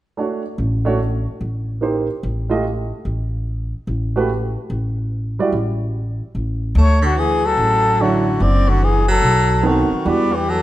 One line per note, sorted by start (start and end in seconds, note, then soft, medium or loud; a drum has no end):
0.17 0.41 A3 soft
0.17 0.41 D4 soft
0.17 0.42 F#4 soft
0.17 0.42 C#5 soft
0.58 1.25 A1 medium
0.85 0.98 A3 medium
0.85 0.98 D4 soft
0.85 0.99 F#4 soft
0.85 0.99 C#5 medium
1.41 2.08 A1 medium
1.81 2.06 A#3 soft
1.81 2.06 D#4 soft
1.81 2.06 G4 soft
1.81 2.06 C5 soft
2.23 2.90 A1 medium
2.49 2.63 A3 medium
2.49 2.63 F4 medium
2.49 2.63 G4 medium
2.49 2.63 D#5 medium
3.05 3.72 A1 medium
3.87 4.54 A1 medium
4.16 4.28 A3 medium
4.16 4.28 F#4 soft
4.16 4.29 G4 medium
4.16 4.29 B4 medium
4.70 5.37 A1 medium
5.39 5.52 G3 medium
5.39 5.52 E4 medium
5.39 5.52 F#4 medium
5.39 5.52 D5 medium
5.52 6.19 A1 medium
6.35 6.73 A1 medium
6.75 7.54 D2 medium
6.75 7.01 A3 medium
6.80 7.03 C#5 medium
7.02 7.19 D3 medium
7.02 7.21 F#4 medium
7.17 7.47 E3 medium
7.17 7.48 G#4 medium
7.45 8.03 F#3 medium
7.45 8.03 A4 medium
7.57 8.36 A1 medium
8.00 8.44 D3 medium
8.00 8.24 F#3 medium
8.00 8.24 D4 soft
8.00 8.24 E4 medium
8.00 8.44 F#4 medium
8.00 8.24 C#5 medium
8.40 9.18 F#1 medium
8.40 8.70 C4 medium
8.40 8.71 D5 medium
8.69 8.85 D3 medium
8.69 8.86 F#4 medium
8.83 9.08 E3 medium
8.83 9.10 G#4 medium
9.08 9.68 F#3 medium
9.08 9.69 A4 medium
9.22 9.86 B1 medium
9.63 9.87 D#3 medium
9.63 10.09 D#3 medium
9.63 9.87 B3 medium
9.63 9.88 C4 soft
9.63 9.88 A4 medium
9.67 10.10 F#4 medium
9.91 muted upright bass stroke soft
10.04 10.62 E2 medium
10.04 10.28 E3 soft
10.04 10.29 G3 soft
10.04 10.34 B3 medium
10.04 10.29 D4 soft
10.04 10.29 F#4 medium
10.08 10.37 D5 medium
10.33 10.50 E3 medium
10.33 10.52 G4 medium
10.49 10.62 F#3 medium
10.49 10.62 A4 medium